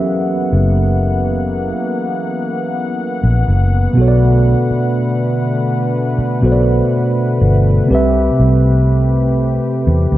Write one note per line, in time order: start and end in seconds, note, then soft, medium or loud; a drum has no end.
0.00 3.93 E3 medium
0.00 3.42 F#3 medium
0.00 3.93 A#3 medium
0.00 3.93 B3 medium
0.00 3.43 C#4 medium
0.00 3.44 G4 medium
0.00 3.99 A4 medium
0.00 3.45 A#4 medium
0.00 3.46 E5 medium
0.00 3.98 F#5 medium
0.00 7.86 F#5 medium
0.53 1.71 F#1 loud
3.23 3.42 A#1 medium
3.48 3.86 F#1 medium
3.93 4.54 B1 loud
3.93 6.37 B2 medium
3.93 7.86 D3 medium
3.93 10.18 A3 medium
3.93 6.38 B3 medium
3.93 10.18 B4 medium
3.97 6.39 F#4 medium
3.97 6.40 A4 medium
4.01 4.06 C#5 medium
4.08 6.44 D5 medium
4.71 muted fingered electric bass stroke soft
6.18 muted fingered electric bass stroke soft
6.41 6.81 B1 medium
6.41 7.89 B2 medium
6.41 7.90 B3 medium
6.41 7.90 F#4 medium
6.41 7.91 A4 medium
6.45 6.50 C5 medium
6.52 7.95 D5 medium
7.41 7.79 G1 loud
7.86 10.18 C3 medium
7.86 10.18 C4 medium
7.86 10.18 G4 medium
7.91 8.28 C2 loud
7.91 10.18 G4 medium
7.91 10.18 B4 medium
7.95 10.18 E5 medium
8.40 9.58 C2 medium
9.87 10.06 E2 medium
10.12 10.18 D2 medium